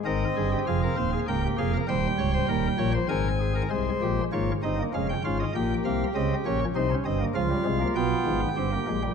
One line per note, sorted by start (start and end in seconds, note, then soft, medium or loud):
0.05 0.24 G#1 medium
0.05 0.24 G#2 medium
0.05 1.10 C4 medium
0.05 0.24 A#4 medium
0.05 0.58 D#5 medium
0.36 0.55 G1 medium
0.36 0.55 G2 medium
0.36 0.49 G#4 medium
0.51 0.65 G4 medium
0.67 0.86 F1 medium
0.67 0.86 F2 medium
0.67 0.80 G#4 medium
0.67 1.19 F5 medium
0.82 0.95 A#4 medium
0.97 1.16 D#1 medium
0.97 1.16 D#2 medium
0.97 1.10 C5 medium
1.13 1.26 G#4 medium
1.28 1.46 C#1 medium
1.28 1.47 C#2 medium
1.28 1.80 A#3 medium
1.28 1.41 A#4 medium
1.28 1.47 G5 medium
1.43 1.56 G4 medium
1.58 1.77 F1 medium
1.58 1.77 F2 medium
1.58 1.71 G#4 medium
1.58 1.77 F5 medium
1.74 1.86 A#4 medium
1.88 2.07 D#1 loud
1.88 2.07 D#2 loud
1.88 2.92 G3 medium
1.88 2.07 C5 medium
1.88 2.92 G5 medium
2.18 2.37 C#1 medium
2.18 2.37 C#2 loud
2.18 2.31 C#5 medium
2.33 2.46 C5 medium
2.48 2.67 D#1 medium
2.48 2.67 D#2 loud
2.48 2.67 A#4 medium
2.78 2.97 A#1 loud
2.78 2.97 A#2 medium
2.78 2.91 C#5 medium
2.94 3.07 C5 medium
3.09 3.62 G#1 medium
3.09 3.62 G#2 medium
3.09 3.62 C4 medium
3.09 3.28 A#4 medium
3.09 3.62 G#5 medium
3.40 3.53 G#4 medium
3.55 3.68 A#4 medium
3.70 3.89 C2 medium
3.70 3.89 C3 medium
3.70 4.23 G#3 medium
3.70 3.89 G#4 medium
3.70 4.23 C5 medium
4.02 4.21 A#1 medium
4.02 4.21 A#2 medium
4.02 4.21 G4 medium
4.32 4.51 G#1 medium
4.32 4.51 G#2 medium
4.32 4.51 A#3 medium
4.32 4.51 F4 medium
4.32 4.51 C#5 medium
4.63 4.82 G1 medium
4.63 4.82 G2 medium
4.63 4.76 C4 medium
4.63 4.82 D#4 medium
4.63 4.82 D#5 medium
4.79 4.92 A#3 medium
4.94 5.13 F1 medium
4.94 5.13 F2 medium
4.94 5.13 G#3 medium
4.94 5.13 C#4 medium
4.94 5.07 F5 medium
5.09 5.22 G5 medium
5.24 5.43 G#1 medium
5.24 5.43 G#2 medium
5.24 5.43 C#4 medium
5.24 5.43 F4 medium
5.24 5.37 F5 medium
5.40 5.53 D#5 medium
5.55 5.74 A#1 medium
5.55 5.74 A#2 medium
5.55 6.07 A#3 medium
5.55 6.59 G4 medium
5.55 5.74 G5 medium
5.85 6.04 C2 medium
5.85 6.04 C3 medium
5.85 6.04 F5 medium
6.15 6.34 C#2 medium
6.15 6.34 C#3 medium
6.15 6.34 C4 medium
6.15 6.34 D#5 medium
6.46 6.64 A#1 medium
6.46 6.64 A#2 medium
6.46 6.64 C#4 medium
6.46 6.64 C#5 medium
6.75 6.94 C2 medium
6.75 6.94 C3 medium
6.75 6.88 D#4 medium
6.75 6.94 C5 medium
6.91 7.03 C#4 medium
7.05 7.24 G1 medium
7.05 7.24 G2 medium
7.05 7.18 C4 medium
7.05 7.24 D#5 medium
7.20 7.33 A#3 medium
7.35 7.54 C#2 medium
7.35 7.54 C#3 medium
7.35 7.48 F3 medium
7.35 8.40 F4 medium
7.35 7.87 F5 medium
7.50 7.63 G3 medium
7.65 7.84 C2 medium
7.65 7.84 C3 medium
7.65 7.78 G#3 medium
7.81 7.94 A#3 medium
7.96 8.15 B1 medium
7.96 8.14 B2 loud
7.96 8.48 B3 medium
7.96 9.02 G5 medium
8.26 8.45 G#1 medium
8.26 8.45 G#2 medium
8.57 8.76 G1 medium
8.57 8.76 G2 medium
8.57 8.70 C4 medium
8.57 9.11 G4 medium
8.72 8.86 A#3 medium
8.88 9.07 A#1 medium
8.88 9.08 A#2 medium
8.88 9.01 G#3 medium
9.04 9.14 G3 medium